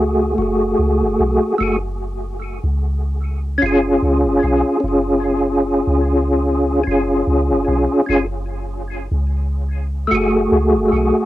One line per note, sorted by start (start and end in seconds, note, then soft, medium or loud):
0.00 0.34 C#2 loud
0.00 0.31 A3 medium
0.00 0.33 F#4 medium
0.00 0.35 G#4 medium
0.34 1.53 A3 medium
0.38 0.74 F#1 medium
0.38 1.55 F#4 medium
0.38 1.57 G#4 medium
0.79 1.03 C#2 medium
1.01 1.17 F#1 medium
1.20 1.39 B1 medium
1.58 2.59 F#1 medium
1.58 1.77 A3 medium
1.58 1.78 F#4 medium
1.62 1.79 G#4 medium
2.63 3.59 C#2 medium
3.58 4.77 C#4 medium
3.62 3.98 F#1 medium
3.62 4.79 F4 medium
3.62 4.81 G#4 loud
4.02 4.26 C#2 loud
4.24 4.41 F#1 loud
4.43 4.63 B1 medium
4.80 5.82 F#1 loud
4.80 6.80 C#4 medium
4.80 6.82 F4 medium
4.88 6.84 G#4 medium
5.87 6.83 C#2 medium
6.84 7.23 F#1 loud
6.84 8.02 C#4 medium
6.84 8.04 F4 medium
6.91 8.06 G#4 medium
7.27 7.51 C#2 medium
7.50 7.65 F#1 medium
7.68 7.87 B1 medium
8.06 9.07 F#1 loud
8.06 8.25 C#4 medium
8.06 8.26 F4 medium
8.06 8.27 G#4 loud
9.11 10.07 C#2 loud
10.07 11.26 A3 medium
10.07 11.26 F#4 medium
10.12 10.47 F#1 medium
10.12 11.26 G#4 loud
10.52 10.76 C#2 medium
10.74 10.90 F#1 medium
10.92 11.11 B1 medium